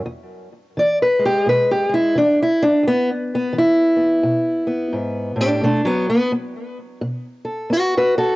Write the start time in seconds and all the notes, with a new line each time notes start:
0.06 E2
0.77 E3 D5
1.02 B4
1.19 G#3
1.25 G4
1.46 B2 B4
1.71 G4
1.89 G#3
1.94 E4
2.15 E3 D4
2.42 E4
2.62 D4
2.83 E2
2.87 B3
3.35 B3
3.53 E3
3.58 E4
3.97 B3
4.23 B2
4.67 B3
4.93 G#2
5.36 A2
5.41 D4 G4
5.62 B2 A3 D4
5.85 F#3 B3
6.10 B3
6.32 B3
7.01 B2
7.45 A4
7.70 B3 F#4 B4
7.97 F#4 B4
8.18 F#4 A4